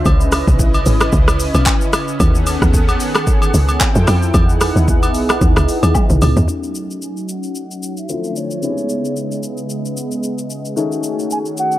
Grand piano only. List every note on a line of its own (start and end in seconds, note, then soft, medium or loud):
6.48 8.06 A3 medium
6.48 8.06 C#4 medium
6.48 8.06 D#4 medium
6.48 8.07 F#4 medium
8.09 8.63 D3 medium
8.09 8.63 A3 medium
8.09 8.63 C4 medium
8.09 8.62 E4 medium
8.09 8.63 F4 medium
8.62 10.72 C#3 medium
8.62 10.73 B3 medium
8.62 10.73 D#4 medium
8.62 10.74 E4 medium
8.62 8.71 G4 medium
8.71 10.77 G#4 medium
10.76 11.79 D#3 medium
10.76 11.79 A3 medium
10.76 11.79 C#4 medium
10.76 11.79 D#4 medium
10.76 11.79 G#4 medium